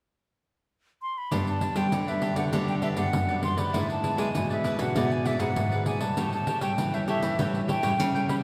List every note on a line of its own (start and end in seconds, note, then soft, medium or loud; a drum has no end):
1.02 1.19 C6 medium
1.18 1.48 B5 medium
1.31 1.90 G2 medium
1.31 1.58 G2 medium
1.31 1.73 G3 medium
1.31 1.73 B3 medium
1.31 1.60 D4 medium
1.31 1.73 D4 medium
1.31 1.61 G4 medium
1.31 1.61 B4 medium
1.31 1.62 D5 medium
1.31 pandeiro medium
1.47 1.78 A5 medium
1.47 pandeiro soft
1.61 1.75 D4 medium
1.61 1.75 G4 soft
1.61 1.76 B4 medium
1.61 1.76 D5 medium
1.61 pandeiro medium
1.76 1.89 G3 medium
1.76 2.02 G3 medium
1.76 2.02 B3 medium
1.76 1.86 D4 medium
1.76 2.03 D4 medium
1.76 1.86 G4 medium
1.76 1.86 B4 medium
1.76 1.86 D5 medium
1.76 2.10 G5 medium
1.76 pandeiro medium
1.92 2.31 D3 medium
1.92 2.50 D3 medium
1.92 pandeiro medium
2.07 2.49 G3 medium
2.07 2.49 B3 medium
2.07 2.49 D4 medium
2.07 2.21 G4 soft
2.07 2.22 B4 soft
2.07 2.21 D5 medium
2.07 2.37 E5 medium
2.07 pandeiro soft
2.21 2.36 D4 medium
2.21 2.37 G4 medium
2.21 2.36 B4 medium
2.21 2.34 D5 medium
2.21 pandeiro medium
2.36 2.50 D3 medium
2.36 2.52 G4 soft
2.36 2.51 B4 soft
2.36 2.51 D5 soft
2.36 2.44 F#5 medium
2.36 pandeiro medium
2.52 3.11 G2 medium
2.52 2.92 D3 medium
2.52 2.82 G3 medium
2.52 2.82 B3 medium
2.52 2.81 D4 medium
2.52 2.82 D4 medium
2.52 2.81 G4 medium
2.52 2.82 B4 medium
2.52 2.83 D5 medium
2.52 pandeiro medium
2.68 2.75 G5 medium
2.68 pandeiro soft
2.82 2.95 D4 medium
2.82 2.96 G4 medium
2.82 2.96 B4 medium
2.82 2.97 D5 medium
2.82 2.89 E5 medium
2.82 pandeiro medium
2.96 3.14 G2 medium
2.96 3.24 G3 medium
2.96 3.24 B3 medium
2.96 3.07 D4 medium
2.96 3.25 D4 medium
2.96 3.07 G4 medium
2.96 3.07 B4 medium
2.96 3.07 D5 medium
2.96 3.41 F#5 medium
2.96 pandeiro medium
3.13 3.65 F#2 medium
3.13 3.72 D3 medium
3.13 pandeiro medium
3.28 3.55 G3 medium
3.28 3.56 B3 medium
3.28 3.56 D4 medium
3.28 3.42 G4 soft
3.28 3.43 B4 soft
3.28 3.43 D5 soft
3.28 pandeiro soft
3.42 3.57 D4 soft
3.42 3.58 G4 soft
3.42 3.57 B4 medium
3.42 3.56 D5 soft
3.42 3.60 C6 medium
3.42 pandeiro medium
3.57 4.03 E3 medium
3.57 4.04 B3 medium
3.57 4.04 D4 medium
3.57 3.73 G4 soft
3.57 3.73 B4 soft
3.57 3.72 D5 soft
3.57 3.89 B5 medium
3.57 pandeiro medium
3.73 4.00 G#2 medium
3.73 4.32 G#2 soft
3.73 4.02 E4 medium
3.73 4.02 G#4 medium
3.73 4.03 B4 medium
3.73 4.04 D5 medium
3.73 pandeiro medium
3.90 4.21 A5 medium
3.90 pandeiro soft
4.03 4.30 E3 medium
4.03 4.31 B3 medium
4.03 4.31 D4 medium
4.03 4.16 E4 soft
4.03 4.17 G#4 soft
4.03 4.17 B4 medium
4.03 4.18 D5 medium
4.03 pandeiro medium
4.17 4.32 G#3 medium
4.17 4.28 E4 medium
4.17 4.28 G#4 medium
4.17 4.28 B4 medium
4.17 4.28 D5 medium
4.17 4.50 G#5 medium
4.17 pandeiro medium
4.35 4.93 G#2 medium
4.35 4.74 B2 medium
4.35 4.76 E3 soft
4.35 4.76 B3 medium
4.35 4.77 D4 medium
4.35 pandeiro medium
4.50 4.64 G#4 soft
4.50 4.64 B4 soft
4.50 4.64 D5 soft
4.50 4.82 E5 medium
4.50 pandeiro soft
4.64 4.79 E4 medium
4.64 4.79 G#4 medium
4.64 4.79 B4 medium
4.64 4.77 D5 medium
4.64 pandeiro medium
4.79 4.93 B2 medium
4.79 5.21 E3 medium
4.79 5.21 B3 medium
4.79 5.21 D4 medium
4.79 4.95 G#4 soft
4.79 4.94 B4 soft
4.79 4.94 D5 soft
4.79 5.14 F#5 medium
4.79 pandeiro medium
4.95 5.54 G#2 medium
4.95 5.35 B2 medium
4.95 5.23 E4 medium
4.95 5.24 G#4 medium
4.95 5.25 B4 medium
4.95 5.26 D5 medium
4.95 pandeiro medium
5.11 5.28 G#5 medium
5.11 pandeiro soft
5.25 5.52 E3 soft
5.25 5.52 B3 medium
5.25 5.52 D4 medium
5.25 5.38 E4 medium
5.25 5.38 G#4 medium
5.25 5.39 B4 medium
5.25 5.39 D5 medium
5.25 5.42 E5 medium
5.25 pandeiro medium
5.39 5.54 G#2 medium
5.39 5.49 E4 medium
5.39 5.50 G#4 medium
5.39 5.50 B4 medium
5.39 5.50 D5 medium
5.39 5.86 F#5 medium
5.39 pandeiro medium
5.56 6.08 G#2 medium
5.56 6.15 G#2 medium
5.56 5.98 E3 medium
5.56 5.98 B3 medium
5.56 5.98 D4 medium
5.56 pandeiro medium
5.71 5.85 G#4 soft
5.71 5.86 B4 soft
5.71 5.86 D5 medium
5.71 pandeiro soft
5.86 6.00 E4 soft
5.86 6.01 G#4 medium
5.86 6.00 B4 medium
5.86 5.99 D5 medium
5.86 6.03 G#5 medium
5.86 pandeiro medium
6.00 6.42 G3 medium
6.00 6.43 C#4 medium
6.00 6.43 E4 medium
6.00 6.16 G#4 soft
6.00 6.16 B4 soft
6.00 6.15 D5 soft
6.00 6.32 A5 medium
6.00 pandeiro medium
6.17 6.43 A2 medium
6.17 6.75 A2 medium
6.17 6.46 G4 medium
6.17 6.46 A4 medium
6.17 6.47 C#5 medium
6.17 6.48 G5 medium
6.17 pandeiro medium
6.33 6.61 A5 medium
6.33 pandeiro soft
6.47 6.60 G4 medium
6.47 6.61 A4 medium
6.47 6.61 C#5 soft
6.47 6.61 G5 medium
6.47 pandeiro medium
6.61 6.88 G3 medium
6.61 6.75 A3 medium
6.61 6.88 C#4 medium
6.61 6.88 E4 medium
6.61 6.71 G4 medium
6.61 6.71 A4 medium
6.61 6.72 C#5 medium
6.61 6.96 G5 medium
6.61 6.72 G5 medium
6.61 pandeiro medium
6.78 7.17 E3 medium
6.78 7.36 E3 medium
6.78 pandeiro medium
6.94 7.35 G3 medium
6.94 7.35 C#4 medium
6.94 7.35 E4 medium
6.94 7.07 A4 soft
6.94 7.08 C#5 soft
6.94 7.07 E5 medium
6.94 7.08 G5 soft
6.94 pandeiro soft
7.08 7.22 G4 medium
7.08 7.23 A4 medium
7.08 7.21 C#5 medium
7.08 7.39 E5 medium
7.08 7.20 G5 medium
7.08 pandeiro medium
7.22 7.36 E3 medium
7.22 7.38 A4 soft
7.22 7.37 C#5 soft
7.22 7.37 G5 soft
7.22 pandeiro medium
7.38 7.97 A2 medium
7.38 7.78 E3 medium
7.38 7.80 G3 medium
7.38 7.80 C#4 medium
7.38 7.80 E4 medium
7.38 7.66 G4 medium
7.38 7.67 A4 medium
7.38 7.68 C#5 medium
7.38 7.69 G5 medium
7.38 pandeiro medium
7.55 pandeiro soft
7.68 7.81 G4 medium
7.68 7.82 A4 medium
7.68 7.82 C#5 medium
7.68 8.26 G5 loud
7.68 7.82 G5 medium
7.68 pandeiro medium
7.82 8.00 A2 medium
7.82 8.10 G3 medium
7.82 8.10 C#4 medium
7.82 8.10 E4 medium
7.82 7.92 G4 medium
7.82 7.93 A4 medium
7.82 7.93 C#5 medium
7.82 7.93 G5 medium
7.82 pandeiro medium
8.00 8.43 C#3 medium
8.00 8.43 E3 medium
8.00 pandeiro medium
8.14 8.43 G3 medium
8.14 8.43 C#4 medium
8.14 8.43 E4 medium
8.14 8.28 A4 soft
8.14 8.29 C#5 soft
8.14 8.29 G5 medium
8.14 pandeiro soft
8.28 8.43 G4 soft
8.28 8.43 A4 medium
8.28 8.43 C#5 medium
8.28 8.42 G5 soft
8.28 8.35 B5 medium
8.28 pandeiro medium